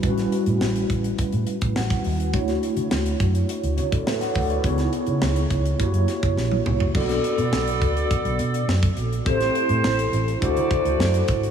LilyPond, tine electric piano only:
\new Staff \with { instrumentName = "Tine electric piano" } { \time 4/4 \key b \minor \tempo 4 = 104 << { r2. fis''4 | r2 r8 <fis' cis''>16 <a' d''>16 <b' e''>16 <cis'' fis''>16 <a' d''>16 <fis' cis''>16~ | <fis' cis''>16 r2. r8. | r1 |
r1 | } \\ { <g cis' e' fis' b'>1 | <a d' e' fis' cis''>2~ <a d' e' fis' cis''>8 r4. | <b dis' e' gis' cis''>2 <ais e' fis' g' cis''>2 | <b d' fis' a' d''>1 |
<c' e' g' a' c''>2 <d' e' fis' a' c''>2 | } >> }